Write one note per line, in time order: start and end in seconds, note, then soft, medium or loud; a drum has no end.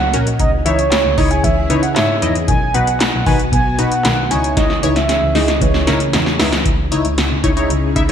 0.00 0.12 F#3 medium
0.00 0.37 A#3 medium
0.00 2.44 C#4 medium
0.00 0.37 F#4 medium
0.00 0.26 F#5 loud
0.13 0.25 A#1 medium
0.13 0.27 C#4 medium
0.13 0.38 C#4 medium
0.13 0.27 F#4 medium
0.13 0.27 A#4 medium
0.13 closed hi-hat medium
0.27 closed hi-hat medium
0.39 0.51 C#2 loud
0.39 2.46 C#3 medium
0.39 0.64 D#4 medium
0.39 2.46 E4 medium
0.39 2.46 G#4 medium
0.39 0.51 D#5 loud
0.39 kick loud
0.39 closed hi-hat medium
0.66 0.77 C#2 loud
0.66 0.90 E3 medium
0.66 0.80 D#4 medium
0.66 0.80 E4 medium
0.66 1.19 C#5 loud
0.66 0.80 C#5 medium
0.66 0.75 E5 medium
0.66 closed hi-hat medium
0.79 closed hi-hat medium
0.92 1.16 C#4 medium
0.92 snare loud
0.92 clap loud
0.92 closed hi-hat medium
1.05 1.16 C#2 loud
1.18 1.29 C#2 loud
1.18 1.32 D#4 medium
1.18 1.42 D#4 medium
1.18 1.32 E4 medium
1.18 1.32 C#5 medium
1.18 1.55 C#5 medium
1.18 1.32 D#5 loud
1.18 kick loud
1.18 open hi-hat medium
1.31 1.45 G#5 loud
1.31 closed hi-hat medium
1.44 1.55 C#2 loud
1.44 1.68 E3 medium
1.44 1.82 E5 loud
1.44 kick loud
1.44 closed hi-hat medium
1.70 1.81 C#3 loud
1.70 1.95 C#4 medium
1.70 1.84 D#4 medium
1.70 1.84 E4 medium
1.70 1.80 B4 medium
1.70 1.84 C#5 medium
1.70 closed hi-hat medium
1.83 1.89 F#5 loud
1.83 closed hi-hat medium
1.96 2.07 G#2 loud
1.96 2.21 D#4 medium
1.96 2.33 C#5 medium
1.96 2.32 E5 loud
1.96 snare loud
1.96 clap medium
1.96 closed hi-hat medium
2.22 2.33 E2 medium
2.22 2.47 E3 medium
2.22 2.36 D#4 medium
2.22 2.36 E4 medium
2.22 2.36 D#5 medium
2.22 closed hi-hat medium
2.35 closed hi-hat medium
2.48 2.59 B1 loud
2.48 2.73 D#3 medium
2.48 4.29 B3 medium
2.48 4.29 F#4 medium
2.48 2.76 G#5 loud
2.48 kick loud
2.48 closed hi-hat medium
2.74 2.85 B1 loud
2.74 2.99 B3 medium
2.74 2.88 D#4 medium
2.74 2.88 F#4 medium
2.74 2.88 B4 medium
2.74 3.26 F#5 loud
2.74 closed hi-hat medium
2.87 closed hi-hat medium
3.00 3.25 D#4 medium
3.00 snare loud
3.00 clap loud
3.00 closed hi-hat medium
3.13 3.25 B1 medium
3.26 3.38 B1 loud
3.26 3.51 D#3 medium
3.26 3.40 D#4 medium
3.26 3.40 F#4 medium
3.26 3.40 B4 medium
3.26 3.38 G#5 loud
3.26 kick loud
3.26 open hi-hat medium
3.39 closed hi-hat medium
3.52 3.64 B1 loud
3.52 3.77 B3 medium
3.52 3.80 G#5 loud
3.52 kick loud
3.52 closed hi-hat medium
3.79 3.90 B2 loud
3.79 4.03 D#4 medium
3.79 3.93 D#4 medium
3.79 3.93 F#4 medium
3.79 3.93 B4 medium
3.79 4.32 F#5 loud
3.79 closed hi-hat medium
3.92 closed hi-hat medium
4.05 4.16 B1 medium
4.05 4.29 D#3 medium
4.05 snare loud
4.05 clap medium
4.05 closed hi-hat medium
4.31 4.64 C#2 medium
4.31 6.63 C#3 medium
4.31 6.63 E3 medium
4.31 6.63 C#4 medium
4.31 4.55 C#4 medium
4.31 4.73 D#4 medium
4.31 4.73 E4 medium
4.31 6.63 G#4 medium
4.31 4.73 C#5 medium
4.31 4.56 G#5 loud
4.31 closed hi-hat medium
4.44 closed hi-hat medium
4.57 4.81 D#4 medium
4.57 4.84 D#5 loud
4.57 kick loud
4.57 snare medium
4.57 closed hi-hat medium
4.70 snare medium
4.83 4.94 C#2 medium
4.83 5.08 E3 medium
4.83 4.97 D#4 medium
4.83 4.97 E4 medium
4.83 4.97 C#5 medium
4.83 closed hi-hat medium
4.96 5.37 E5 loud
4.96 snare medium
4.96 closed hi-hat medium
5.09 5.34 C#4 medium
5.09 snare medium
5.09 closed hi-hat medium
5.22 5.33 C#2 loud
5.35 5.46 C#2 loud
5.35 5.49 D#4 medium
5.35 5.60 D#4 medium
5.35 5.49 E4 medium
5.35 5.49 G#4 medium
5.35 5.63 D#5 medium
5.35 snare medium
5.35 open hi-hat medium
5.48 snare medium
5.48 closed hi-hat medium
5.61 5.72 C#2 loud
5.61 5.86 E3 medium
5.61 6.39 C#5 medium
5.61 kick loud
5.61 closed hi-hat medium
5.74 snare medium
5.87 5.98 C#3 loud
5.87 6.12 C#4 medium
5.87 6.01 D#4 medium
5.87 6.01 E4 medium
5.87 6.01 A#4 medium
5.87 snare medium
5.87 closed hi-hat medium
6.00 closed hi-hat medium
6.13 6.25 E2 medium
6.13 6.38 D#4 medium
6.13 snare loud
6.13 closed hi-hat medium
6.26 snare medium
6.39 6.51 C#2 loud
6.39 6.64 E3 medium
6.39 6.53 D#4 medium
6.39 6.53 E4 medium
6.39 6.53 E5 loud
6.39 snare loud
6.39 open hi-hat medium
6.52 snare loud
6.52 closed hi-hat medium
6.66 6.77 C#2 loud
6.66 8.12 C#3 medium
6.66 8.12 C#4 medium
6.66 8.12 D#4 medium
6.66 8.12 E4 medium
6.66 8.12 G#4 medium
6.66 kick loud
6.66 closed hi-hat medium
6.92 7.03 C#2 medium
6.92 7.06 D#4 medium
6.92 7.06 E4 medium
6.92 7.06 C#5 loud
6.92 closed hi-hat medium
7.05 7.16 C#2 medium
7.05 closed hi-hat soft
7.18 7.29 C#2 loud
7.18 snare loud
7.18 closed hi-hat medium
7.31 7.42 C#3 medium
7.44 7.55 C#2 loud
7.44 7.51 D#4 medium
7.44 7.51 E4 medium
7.44 7.51 C#5 loud
7.44 kick loud
7.44 closed hi-hat medium
7.57 7.71 D#4 medium
7.57 7.71 E4 medium
7.57 7.71 C#5 medium
7.57 closed hi-hat medium
7.70 7.81 C#2 loud
7.70 closed hi-hat medium
7.96 8.07 C#2 loud
7.96 8.03 D#4 medium
7.96 8.03 E4 medium
7.96 8.03 E5 loud
7.96 kick medium
7.96 closed hi-hat medium